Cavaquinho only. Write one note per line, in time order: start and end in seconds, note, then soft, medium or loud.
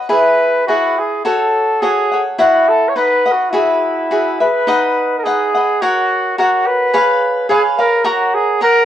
0.09 0.67 E4 medium
0.09 0.67 G#4 medium
0.09 0.68 B4 medium
0.09 0.68 E5 medium
0.68 1.24 E4 medium
0.68 1.25 G#4 soft
0.68 1.25 B4 medium
0.68 1.25 E5 medium
1.25 1.82 F#4 medium
1.25 1.81 A4 medium
1.25 1.82 C#5 medium
1.25 1.83 F#5 medium
1.82 2.11 F#4 medium
1.82 2.12 A4 soft
1.82 2.12 C#5 medium
1.82 2.11 F#5 medium
2.12 2.39 A4 soft
2.12 2.39 C#5 soft
2.12 2.38 F#5 soft
2.39 2.95 E4 medium
2.39 2.96 B4 medium
2.39 2.96 E5 medium
2.39 2.98 F#5 medium
2.96 3.25 D#4 soft
2.96 3.26 B4 medium
2.96 3.25 D#5 medium
2.96 3.25 F#5 medium
3.26 3.53 B4 soft
3.26 3.53 D#5 soft
3.26 3.53 F#5 soft
3.53 4.10 F#4 medium
3.53 4.10 G#4 medium
3.53 4.11 B4 medium
3.53 4.11 E5 medium
4.11 4.40 F#4 medium
4.11 4.41 G#4 medium
4.11 4.40 B4 soft
4.11 4.39 E5 medium
4.40 4.67 G#4 soft
4.40 4.67 B4 soft
4.40 4.67 E5 soft
4.67 5.24 D#4 medium
4.67 5.24 B4 medium
4.67 5.25 D#5 medium
4.67 5.25 F#5 medium
5.25 5.55 D#4 soft
5.25 5.55 B4 medium
5.25 5.54 D#5 medium
5.25 5.53 F#5 medium
5.54 5.81 B4 soft
5.54 5.82 D#5 soft
5.54 5.81 F#5 soft
5.82 6.37 F#4 medium
5.82 6.37 A#4 medium
5.82 6.39 C#5 medium
5.82 6.38 F#5 medium
6.38 6.93 F#4 medium
6.38 6.93 A#4 medium
6.38 6.94 C#5 medium
6.38 6.94 F#5 medium
6.93 7.48 G#4 medium
6.93 7.49 B4 medium
6.93 7.50 C#5 medium
6.93 7.50 F5 medium
7.49 7.78 G#4 medium
7.49 7.78 B4 medium
7.49 7.78 C#5 medium
7.49 7.77 F5 medium
7.78 8.05 B4 soft
7.78 8.04 C#5 soft
7.78 8.05 F5 soft
8.04 8.60 A#4 medium
8.04 8.60 C#5 medium
8.04 8.61 F#5 medium
8.04 8.61 A#5 medium
8.61 8.85 A#4 medium
8.61 8.85 C#5 medium
8.61 8.85 F#5 medium
8.61 8.85 A#5 medium